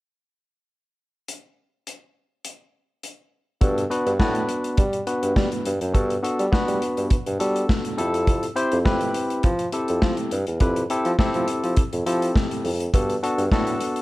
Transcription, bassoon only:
3.62 G2
4.06 G2
4.20 A2
4.78 G3
5.23 G2
5.36 G3
5.66 G2
5.81 F#2
5.94 G2
6.39 G3
6.53 G3
6.68 G3
6.97 G2
7.27 G2
7.40 G3
7.98 F2
8.72 F2
8.86 F2
9.44 F3
9.89 F2
10.02 F3
10.32 G2
10.47 E2
10.61 F2
11.05 F3
11.19 F3
11.35 F3
11.63 F3
11.93 F2
12.06 F3
12.64 F2
12.94 G2
13.38 G2
13.51 A2

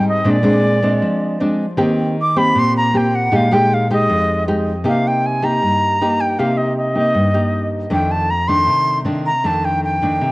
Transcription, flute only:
0.09 D#5
0.30 D5
2.21 D6
2.38 B5
2.59 C6
2.77 A#5
2.97 G5
3.15 F#5
3.36 F5
3.54 G5
3.74 F5
3.93 D#5
4.88 F5
5.07 G5
5.26 G#5
5.44 A#5
6.21 G5
6.39 F5
6.57 D#5
6.77 D#5
7.92 G5
8.11 A5
8.30 A#5
8.48 C6
9.26 A#5
9.46 A5
9.65 G5
9.84 G5

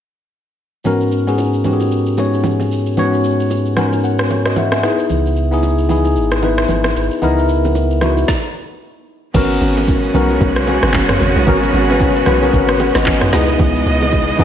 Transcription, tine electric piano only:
0.84 G#2 B3 C#4 F#4 A#4
1.26 G#2 B3 C#4 F#4 G#4
1.64 G#2 B3 C#4 F#4 G4
1.73 G#4
2.17 G#2 B3 C#4 F#4 C#5
2.97 G#2 B3 C#4 F#4 C#5
3.76 G#2 B3 C#4 F#4 A#4 G#5
4.04 F#5
4.31 C#5
4.46 F#4 D#5
4.57 A#4 E5 F#5
4.73 B4 G#5
4.83 B3 D#4 E4 G#4
5.51 B3 D#4 E4 G#4
5.89 B3 D#4 E4 G#4
6.42 B3 D#4 E4 B4
7.22 B3 D#4 E4 A#4
8.01 B3 D#4 E4 F#4
9.34 B3 C#4 F#4 A#4
10.14 B3 C#4 F#4 A#4
10.67 B3 C#4 F#4 C#5
11.46 B3 C#4 F#4 A#4
11.88 B3 C#4 F#4 B4
12.26 B3 C#4 F#4 B4
12.41 B3 C#4 F#4 A#4
12.69 B4 G#5
12.80 A#4 F#5
12.96 F#4 D#5
13.07 C#5
13.22 D#4 B4
13.32 B3 D#4 E4 G#4
14.38 B3 D#4 E4 G#4

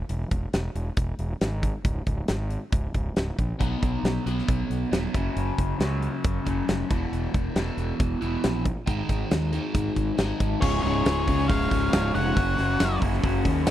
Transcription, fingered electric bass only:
0.10 E1
0.31 E1
0.53 E1
0.75 E1
0.97 E1
1.19 E1
1.41 G#1
1.84 C#1
2.07 C#1
2.29 G#1
2.72 C#1
2.94 C#1
3.16 C#1
3.39 A#1
3.61 B1
3.82 B1
4.03 B1
4.26 B1
4.48 B1
4.70 B1
4.92 D#1
5.14 F#1
5.36 F#1
5.58 F#1
5.80 C#2
6.24 F#1
6.47 F#1
6.69 F1
6.91 E1
7.12 E1
7.34 E1
7.55 E1
7.77 E1
8.00 E1
8.22 E1
8.44 A#1
8.88 G#1
9.09 G#1
9.31 D#2
9.75 G#1
9.96 G#1
10.18 G#1
10.40 G#1
10.62 C#1
10.84 C#1
11.06 C#1
11.28 C#2
11.49 C#1
11.71 C#1
11.93 C#1
12.15 F1
12.36 F#1
12.59 F#1
12.81 F#1
13.02 F#1
13.23 F#1
13.45 D#2
13.67 F#1

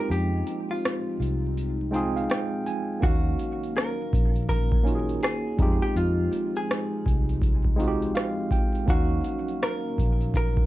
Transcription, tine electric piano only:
Already playing: G#3 C4 D#4 F4 G4
1.91 G#3 C4 D#4 F4 G5
1.96 G#4
2.16 F5
2.30 G5
2.66 G#5
3.00 A#3 C#4 D#4
3.04 F#4 F5
4.83 A#3 C#4 D#4 F4
4.88 F#4
4.95 G#4
5.57 G3 C4 D#4 F4
5.62 G#3 G4
7.76 G#3 C4 D#4
7.80 F4 F#4
7.88 G4
8.15 F5
8.52 G5
8.86 A#3 C#4 D#4 F5
8.91 F#4

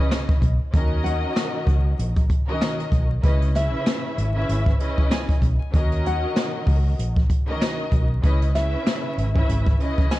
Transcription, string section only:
Already playing: C#3 C#4 E4 B4 D#5
0.72 D#3 C#4 F#4 A#4 D#5
2.46 D#3 C#4 F#4 A#4 D#5
3.22 C#3 C#4 E4 B4 D#5
3.54 C#3 C#4 E4 B4 E5
4.33 C#3 C#4 E4 B4 E5
4.78 C#3 C#4 E4 B4 D#5
5.72 D#3 C#4 F#4 A#4 D#5
7.46 D#3 C#4 F#4 A#4 D#5
8.22 C#3 C#4 E4 B4 D#5
8.54 C#3 C#4 E4 B4 E5
9.33 C#3 C#4 E4 B4 E5
9.78 C#3 C#4 E4 B4 D#5

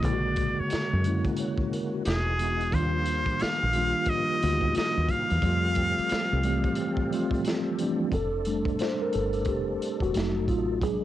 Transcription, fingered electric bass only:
0.04 A#1
0.60 muted fingered electric bass stroke
0.73 muted fingered electric bass stroke
0.93 F#2
2.07 E1
2.74 D#2
3.27 muted fingered electric bass stroke
3.42 muted fingered electric bass stroke
3.63 A#1
4.43 D2
4.77 muted fingered electric bass stroke
4.97 D#2
5.31 E2
5.43 F2
5.99 muted fingered electric bass stroke
6.12 muted fingered electric bass stroke
6.33 C2
8.13 F1
9.15 G1
9.47 F1
10.02 E1
10.16 F1
10.49 A1
10.83 A#1

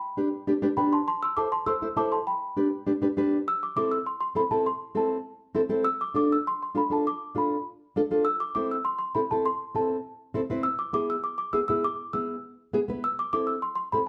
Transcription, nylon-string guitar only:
0.17 D4 G4 B4
0.47 D4 G4 B4
0.62 D4 G4 B4
0.77 D4 G4 B4
1.37 E4 A4 C5
1.66 E4 A4 C5
1.82 E4 A4 C5
1.97 E4 A4 C5
2.57 D4 G4 B4
2.87 D4 G4 B4
3.02 D4 G4 B4
3.17 D4 G4 B4
3.76 C4 E4 A4
4.35 C4 E4 A4
4.51 C4 E4 A4
4.95 C4 E4 A4
5.55 C4 E4 A4
5.69 C4 E4 A4
6.14 D4 F4 A4
6.75 D4 F4 A4
6.90 D4 F4 A4
7.35 D4 F4 A4
7.96 D4 F4 A4
8.11 D4 F4 A4
8.56 C4 E4 A4
9.15 C4 E4 A4
9.31 C4 E4 A4
9.75 C4 E4 A4
10.34 C4 E4 A4
10.50 C4 E4 B4
10.93 B3 E4 G#4
11.53 B3 E4 G#4
11.69 B3 E4 G#4
12.14 B3 E4 G#4
12.73 B3 E4 G#4
12.88 B3 E4 B4
13.33 C4 E4 A4
13.93 C4 E4 A4

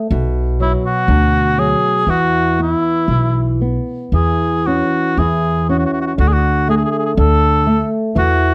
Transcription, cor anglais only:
0.62 E4
0.86 F#4
1.59 G#4
2.10 F#4
2.63 E4
4.15 G#4
4.67 F#4
5.19 G#4
5.70 F#4
5.79 F#4
5.86 F#4
5.93 F#4
6.01 F#4
6.07 F#4
6.20 F#4
6.28 G#4
6.33 F#4
6.70 G#4
6.77 G#4
6.85 G#4
6.92 G#4
6.99 G#4
7.06 G#4
7.19 A4
8.18 F#4

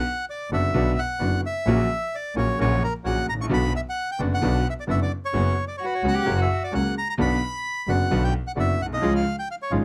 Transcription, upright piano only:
0.51 F#1 F#2 D3 F#3 B3 F#4
0.74 B1 B2 D3 F#3 B3 F#4
1.21 F#1 F#2 D3 F#3 B3 F#4
1.67 A#1 A#2 C#3 F#3 A#3 F#4
2.36 A#1 A#2 C#3 F#3 A#3 F#4
2.60 A#1 A#2 C#3 F#3 A#3 F#4
3.06 A#1 A#2 C#3 F#3 A#3 F#4
3.34 G#1
3.41 A1 A#1
3.49 B1 B2 D3 F#3 B3 F#4
4.19 F#1 F#2 D3 F#3 B3 F#4
4.41 B1 B2 D3 F#3 B3 F#4
4.87 F#1 F#2 D3 F#3 B3 F#4
5.33 F#2 C#3 F#3 B3 F#4
6.04 C#2 C#3 F#3 B3 F#4
6.25 F#2 C#3 F#3 A#3 F#4
6.73 C#2 C#3 F#3 A#3 F#4
7.17 B1 B2 D3 F#3 B3 F#4
7.88 F#1 F#2 D3 F#3 B3 F#4
8.11 B1 B2 D3 F#3 B3 F#4
8.56 F#1 F#2 D3 F#3 B3 F#4
8.86 A#1
8.93 B1
8.97 C2
9.02 C#2 C#3 F3 G#3 F4
9.72 G#1 G#2 C#3 F3 G#3 F4

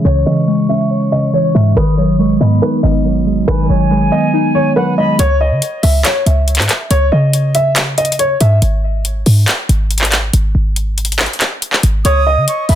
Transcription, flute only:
0.05 C#6
1.76 D#6
2.19 C#6
2.41 B5
3.48 G#5
4.77 F#5
4.98 B5
12.05 D#6
12.48 C#6
12.69 B5

